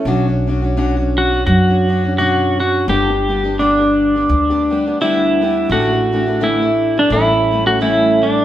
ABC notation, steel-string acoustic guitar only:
X:1
M:4/4
L:1/16
Q:"Swing" 1/4=85
K:Glyd
V:1 name="Steel-string acoustic guitar"
[B,,F,CDF] [CDF] [F,CDF] [CDF] [B,,F,CDF] [CDF]2 [CDF]2 [CDF] [F,CDF] [CDF] [B,,F,CDF]2 [F,CDF]2 | [G,,D,G,B,DG] [G,B,DG] [G,B,DG] [G,B,DG] [G,,D,G,B,DG] [G,B,DG]2 [G,B,DG]2 [G,B,DG] [G,B,DG] [G,B,DG] [G,,D,G,B,DG]2 [G,B,DG]2 | [A,,D,E,A,DG] [E,A,DG] [E,A,DG] [E,A,DG] [A,,D,E,A,DG] [E,A,DG]2 [E,A,DG] [A,,E,G,A,CA] [G,A,CA] [G,A,CA] [G,A,CA] [A,,E,G,A,CA]2 [G,A,A]2 |]